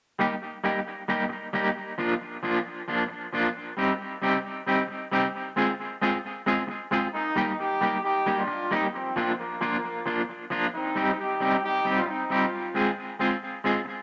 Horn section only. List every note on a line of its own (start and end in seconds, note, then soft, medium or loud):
7.13 7.55 A#3 medium
7.13 7.54 D#4 loud
7.58 8.02 D#4 medium
7.58 8.01 G4 loud
8.02 8.35 D#4 medium
8.02 8.35 G4 loud
8.38 8.72 D4 medium
8.38 8.72 F4 medium
8.73 8.82 C4 medium
8.73 8.82 D#4 medium
8.93 9.34 F3 medium
8.93 9.34 C4 medium
9.38 10.27 F3 medium
9.38 10.27 A#3 medium
10.74 11.15 C4 medium
10.74 11.14 D#4 medium
11.19 11.62 D#4 medium
11.19 11.62 G4 medium
11.63 11.94 D#4 medium
11.63 11.94 G4 loud
11.98 12.07 D4 medium
11.98 12.07 F4 medium
12.08 12.31 C4 medium
12.08 12.31 D#4 medium
12.32 12.77 C4 medium
12.32 12.76 F4 medium